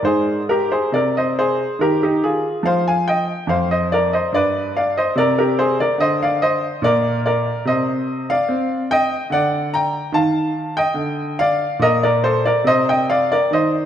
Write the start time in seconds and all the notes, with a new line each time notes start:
0.03 G#2 G#4 C5
0.49 G4 A#4
0.72 G#4 C5
0.92 C3 A#4 D5
1.17 C5 D#5
1.39 G#4 C5
1.79 D#3 G4 A#4
2.03 D#4 G4
2.24 F4 G#4
2.63 F3 C5 F5
2.88 F5 G#5
3.08 D#5 G5
3.47 F2 C5 F5
3.71 C5 D#5
3.92 A#4 D5
4.13 C5 D#5
4.32 G2 B4 D5
4.77 D5 F5
4.97 C5 D#5
5.15 C3 A#4 D5
5.38 G4 A#4
5.59 G#4 C5
5.80 A#4 D5
5.98 D3 C5 D#5
6.22 D5 F5
6.42 C5 D#5
6.82 A#2 A#4 D5
7.26 A#4 D5
7.65 C3 C5 D#5
8.30 D5 F5
8.48 C4
8.91 D#5 G5
9.30 D3 D5 F#5
9.74 G5 A#5
10.12 D#3 F5 A5
10.77 D#5 G5
10.94 D3
11.39 D5 F5
11.79 A#2 A#4 D#5
12.03 A#4 D5
12.24 A4 C5
12.45 A#4 D5
12.64 C3 C5 D#5
12.89 D#5 G5
13.10 D5 F5
13.32 A#4 D5
13.51 D#3 C5 D#5